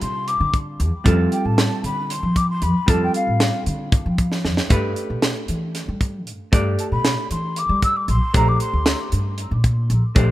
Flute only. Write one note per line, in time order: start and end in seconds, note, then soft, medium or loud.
0.01 0.29 C6 medium
0.27 0.54 D6 medium
1.32 1.47 G5 medium
1.45 1.84 A5 medium
1.84 2.12 B5 medium
2.11 2.37 C6 medium
2.36 2.49 D6 medium
2.49 2.64 C6 medium
2.62 2.91 B5 medium
2.89 3.02 A5 medium
3.03 3.14 G5 medium
3.15 3.63 F5 medium
6.80 6.85 A5 medium
6.92 7.28 B5 medium
7.31 7.59 C6 medium
7.58 7.83 D6 loud
7.83 7.97 E6 medium
7.96 8.09 D6 medium
8.09 8.33 C6 medium
8.35 8.49 A#5 medium
8.48 8.60 D6 medium
8.61 9.09 C6 medium